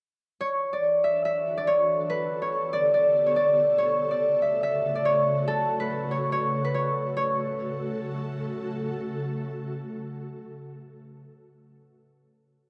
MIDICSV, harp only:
0, 0, Header, 1, 2, 480
1, 0, Start_track
1, 0, Tempo, 422535
1, 461, Time_signature, 4, 2, 24, 8
1, 14423, End_track
2, 0, Start_track
2, 0, Title_t, "Harp"
2, 0, Program_c, 0, 46
2, 461, Note_on_c, 0, 73, 90
2, 828, Note_on_c, 0, 74, 66
2, 896, Note_off_c, 0, 73, 0
2, 1181, Note_on_c, 0, 76, 76
2, 1416, Note_off_c, 0, 76, 0
2, 1421, Note_on_c, 0, 76, 79
2, 1784, Note_off_c, 0, 74, 0
2, 1788, Note_on_c, 0, 74, 73
2, 1900, Note_on_c, 0, 73, 84
2, 1968, Note_off_c, 0, 74, 0
2, 2381, Note_on_c, 0, 71, 91
2, 2742, Note_off_c, 0, 73, 0
2, 2747, Note_on_c, 0, 73, 75
2, 3100, Note_on_c, 0, 74, 83
2, 3168, Note_off_c, 0, 73, 0
2, 3333, Note_off_c, 0, 74, 0
2, 3338, Note_on_c, 0, 74, 78
2, 3378, Note_off_c, 0, 76, 0
2, 3708, Note_on_c, 0, 73, 74
2, 3776, Note_off_c, 0, 74, 0
2, 3819, Note_on_c, 0, 74, 86
2, 3887, Note_off_c, 0, 73, 0
2, 4297, Note_on_c, 0, 73, 96
2, 4365, Note_off_c, 0, 74, 0
2, 4667, Note_on_c, 0, 74, 66
2, 4709, Note_off_c, 0, 71, 0
2, 4735, Note_off_c, 0, 73, 0
2, 5021, Note_on_c, 0, 76, 73
2, 5256, Note_off_c, 0, 76, 0
2, 5260, Note_on_c, 0, 76, 82
2, 5623, Note_off_c, 0, 74, 0
2, 5627, Note_on_c, 0, 74, 71
2, 5740, Note_on_c, 0, 73, 85
2, 5808, Note_off_c, 0, 74, 0
2, 6221, Note_on_c, 0, 69, 101
2, 6587, Note_on_c, 0, 71, 79
2, 6938, Note_off_c, 0, 73, 0
2, 6942, Note_on_c, 0, 73, 75
2, 7177, Note_off_c, 0, 73, 0
2, 7181, Note_on_c, 0, 73, 83
2, 7218, Note_off_c, 0, 76, 0
2, 7544, Note_off_c, 0, 71, 0
2, 7549, Note_on_c, 0, 71, 77
2, 7657, Note_off_c, 0, 73, 0
2, 7661, Note_on_c, 0, 73, 82
2, 8137, Note_off_c, 0, 73, 0
2, 8141, Note_on_c, 0, 73, 79
2, 8716, Note_off_c, 0, 69, 0
2, 9877, Note_off_c, 0, 71, 0
2, 10313, Note_off_c, 0, 73, 0
2, 14423, End_track
0, 0, End_of_file